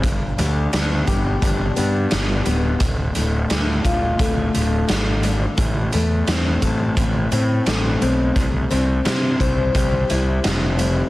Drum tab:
HH |xxxxxxxx|xxxxxxxx|xxxxxxxx|xxxxxxxx|
SD |--o---o-|--o---o-|--o---o-|--o---o-|
BD |o--oo---|o--oo---|o--oo---|o--oo---|